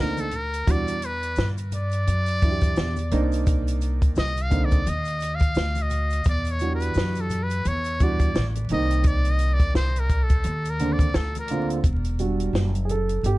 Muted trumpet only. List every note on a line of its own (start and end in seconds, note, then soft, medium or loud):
0.00 0.22 A#4 medium
0.20 0.37 A4 medium
0.36 0.72 A#4 medium
0.71 1.07 D5 loud
1.05 1.48 B4 loud
1.75 3.44 D5 loud
4.19 4.43 D#5 loud
4.42 4.66 F5 loud
4.65 4.91 D5 loud
4.89 5.37 D#5 loud
5.35 5.84 F5 loud
5.82 6.27 D#5 medium
6.29 6.53 D5 loud
6.51 6.74 C#5 medium
6.75 7.22 B4 medium
7.21 7.45 A4 medium
7.43 7.69 B4 medium
7.67 8.05 C#5 medium
8.03 8.46 D5 medium
8.73 9.09 D#5 medium
9.07 9.32 D5 medium
9.30 9.55 D#5 medium
9.53 9.76 D5 medium
9.76 10.01 C5 medium
9.99 10.25 A#4 medium
10.23 10.72 A4 medium
10.70 10.94 A#4 medium
10.93 11.17 D5 medium
11.15 11.38 A4 medium
11.39 11.71 A#4 medium